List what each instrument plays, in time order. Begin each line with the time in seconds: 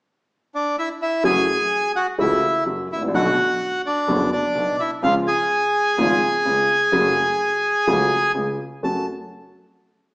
0.55 bandoneon D4 D5
0.79 bandoneon E4 E5
1.02 bandoneon E4 E5
1.23 double bass F#1, grand piano F#2 E3 F#3 A3 C#4 F#4, bandoneon G#4 G#5
1.96 bandoneon F#4 F#5
2.18 grand piano C#2 C#3 E3 A3 C#4 F#4, double bass C#2, bandoneon E4 E5
2.66 double bass F#1, grand piano F#2 F#3
2.90 double bass A1, bandoneon E4 E5
2.96 grand piano G#1
3.02 grand piano A1
3.08 grand piano A#1
3.13 double bass B1, grand piano B1 B2 D3 F#3 B3 F#4, bandoneon F#4 F#5
3.86 bandoneon D4 D5
4.08 double bass F#1, grand piano F#1 F#2 D3 F#3 B3 F#4
4.32 bandoneon D4 D5
4.55 grand piano B1 B2, double bass B1
4.80 bandoneon E4 E5
5.03 grand piano C#2 C#3 F3 G#3 F4, double bass C#2, bandoneon F4 F5
5.27 bandoneon G#4 G#5
5.98 double bass G#1, grand piano G#1 G#2 C#3 F3 G#3 F4
6.45 grand piano C#2 C#3, double bass C#2
6.92 double bass F#1, grand piano F#2 C#3 F#3 A3 F#4
7.87 grand piano C#2 C#3 F#3 A3 F#4, double bass C#2
8.35 grand piano C#2 C#3, double bass C#2
8.83 double bass F#1, grand piano F#2 A3 C#4 F#4, bandoneon A5